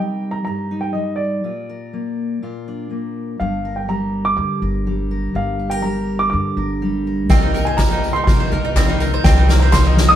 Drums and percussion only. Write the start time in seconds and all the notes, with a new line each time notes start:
7.30 kick, snare, tambourine
7.56 tambourine
7.78 kick, snare, clap, tambourine
8.04 tambourine
8.27 kick, snare
8.76 kick, snare, clap, tambourine
9.00 tambourine
9.24 kick, snare, tambourine
9.49 snare, tambourine
9.73 kick, snare, clap, tambourine
9.97 snare, tambourine